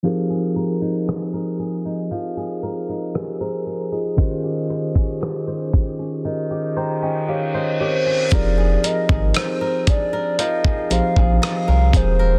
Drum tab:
HH |----------------|x-x-x-x---------|x-x-x-x-x-x-x-x-|
SD |----r-------r---|----r-----------|----r-------r---|
BD |----------------|o--o--o---------|o--o--o--o-o--o-|